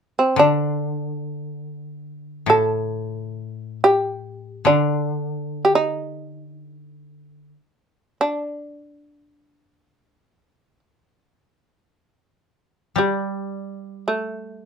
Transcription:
0.19 C4
0.36 D3 D4
2.46 A2 A4
3.84 G4
4.65 D3 D4
5.65 G4
5.75 D#4
8.21 D4
12.96 G3
14.08 A3

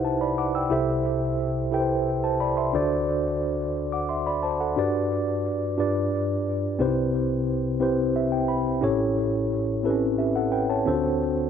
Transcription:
Already playing: C2 C3 D#4 E4 G4 B4 C5 E5 F#5
0.05 C5 A5
0.21 D5 B5
0.38 F#5 D6
0.55 G5 E6
0.70 C2 C3 E4 G4 A4 C5 E5
1.71 E4 G4 A4 B4 G5
1.80 C5
2.24 C5 A5
2.40 D5 B5
2.57 E5 C6
2.73 D2 D3 D4 F4 A4 C5 D5
2.80 F#4
3.92 F#5 D6
4.09 E5 C6
4.26 D5 B5
4.43 C5 A5
4.60 A4 F#5
4.76 G2 D4 F#4 G4 B4 D5
5.78 G2 D4 F4 G4 B4 D5
6.79 C2 C3 C4 D#4 G4 B4 C5
6.86 E4
7.80 C4 E4 G4 B4 C5
8.16 E5
8.32 G5
8.48 B5
8.81 A1 A2 C#4 E4 G4 A4 C#5
9.83 C4 E4 G4 A4 B4
9.90 C#4
10.18 G4 E5
10.36 A4 F#5
10.52 B4 G5
10.70 C#5 A5
10.85 D2 D3 C4 D4 F4 A4 C5
10.93 F#4

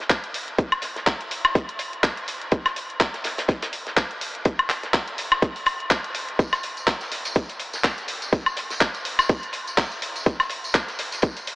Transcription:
0.00 snare
0.10 kick, snare, clap, closed hi-hat
0.24 closed hi-hat
0.34 closed hi-hat, open hi-hat
0.48 closed hi-hat
0.58 kick, closed hi-hat
0.72 closed hi-hat, high woodblock
0.82 snare, closed hi-hat, open hi-hat
0.96 snare, closed hi-hat
1.06 kick, snare, clap, closed hi-hat
1.21 closed hi-hat
1.31 closed hi-hat, open hi-hat
1.45 snare, closed hi-hat, high woodblock
1.55 kick, closed hi-hat
1.69 closed hi-hat
1.79 closed hi-hat, open hi-hat
1.93 closed hi-hat
2.03 kick, snare, clap, closed hi-hat
2.17 closed hi-hat
2.28 closed hi-hat, open hi-hat
2.42 closed hi-hat
2.52 kick, closed hi-hat
2.66 snare, closed hi-hat, high woodblock
2.76 closed hi-hat, open hi-hat
2.90 closed hi-hat
3.00 kick, snare, clap, closed hi-hat
3.14 snare, closed hi-hat
3.24 snare, closed hi-hat, open hi-hat
3.38 snare, closed hi-hat
3.48 kick, snare, closed hi-hat
3.62 snare, closed hi-hat
3.73 closed hi-hat, open hi-hat
3.87 snare, closed hi-hat
3.97 kick, snare, clap, closed hi-hat
4.11 closed hi-hat
4.21 closed hi-hat, open hi-hat
4.35 closed hi-hat
4.45 kick, closed hi-hat
4.59 closed hi-hat, high woodblock
4.70 snare, clap, closed hi-hat, open hi-hat
4.83 snare, closed hi-hat
4.94 kick, snare, clap, closed hi-hat
5.08 closed hi-hat
5.18 closed hi-hat, open hi-hat
5.32 snare, high woodblock
5.42 kick, closed hi-hat
5.56 open hi-hat
5.66 closed hi-hat, open hi-hat, high woodblock
5.80 closed hi-hat
5.90 kick, snare, clap, closed hi-hat
6.04 closed hi-hat
6.15 closed hi-hat, open hi-hat
6.29 closed hi-hat
6.39 kick, closed hi-hat, tambourine
6.53 snare, closed hi-hat, tambourine, high woodblock
6.63 closed hi-hat, open hi-hat
6.77 closed hi-hat, tambourine
6.87 kick, snare, clap, closed hi-hat, tambourine
7.01 snare, closed hi-hat, tambourine
7.12 snare, closed hi-hat, open hi-hat
7.25 closed hi-hat, tambourine
7.35 kick, closed hi-hat, tambourine
7.49 closed hi-hat, tambourine
7.60 closed hi-hat, open hi-hat
7.73 snare, closed hi-hat, tambourine
7.84 kick, snare, clap, closed hi-hat
7.98 closed hi-hat, tambourine
8.08 closed hi-hat, open hi-hat
8.22 closed hi-hat, tambourine
8.33 kick, closed hi-hat, tambourine
8.46 closed hi-hat, tambourine, high woodblock
8.57 snare, closed hi-hat, open hi-hat
8.70 snare, closed hi-hat, tambourine
8.81 kick, snare, clap, closed hi-hat
8.94 closed hi-hat, tambourine
9.05 closed hi-hat, open hi-hat
9.19 snare, closed hi-hat, tambourine, high woodblock
9.29 kick, closed hi-hat, tambourine
9.43 closed hi-hat, tambourine
9.53 closed hi-hat, open hi-hat
9.67 closed hi-hat, tambourine
9.77 kick, snare, clap, closed hi-hat, tambourine
9.92 closed hi-hat, tambourine
10.02 closed hi-hat, open hi-hat
10.16 closed hi-hat, tambourine
10.26 kick, closed hi-hat, tambourine
10.40 snare, closed hi-hat, tambourine, high woodblock
10.50 closed hi-hat, open hi-hat
10.64 closed hi-hat, tambourine
10.74 kick, snare, clap, closed hi-hat
10.88 snare, closed hi-hat, tambourine
10.99 snare, closed hi-hat, open hi-hat
11.12 closed hi-hat, tambourine
11.22 kick, closed hi-hat, tambourine
11.36 closed hi-hat, tambourine
11.47 closed hi-hat, open hi-hat

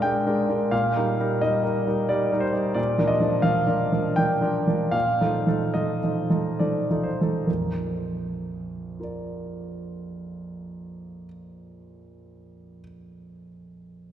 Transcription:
Already playing: A#2 G#3 D4 A#4 D5 D#5 F5
0.02 G#3 D4 A#4 G5
0.26 G#3 D4 A#4
0.49 G#3 D4 A#4
0.71 A#2 F5
0.96 G3 D#4 A#4
1.20 G3 D#4 A#4
1.41 G3 D#4 A#4 D#5
1.63 G3 D#4 A#4
1.87 G3 D#4 A#4
2.09 G3 D#4 A#4 D5
2.32 G3 D#4 A#4
2.40 C5
2.52 G3 D#4 A#4
2.74 A#2 D5
2.98 F3 D4 A#4
3.07 D#5
3.20 F3 D4 A#4
3.42 F3 D4 A#4 F5
3.67 F3 D4 A#4
3.92 F3 D4 A#4
4.16 F3 D4 A#4 G5
4.41 F3 D4 A#4
4.67 F3 D4 A#4
4.91 A#2 F5
5.21 F3 D#4 A4
5.47 F3 D#4 A4
5.74 F3 D#4 A4 D#5
6.04 F3 D#4 A4
6.30 F3 D#4 A4
6.59 F3 D#4 A4 D5
6.91 F3 D#4 A4
7.04 C5
7.21 F3 D#4 A4
7.46 A#1 F2 A#4
9.00 F4 A#4 D5

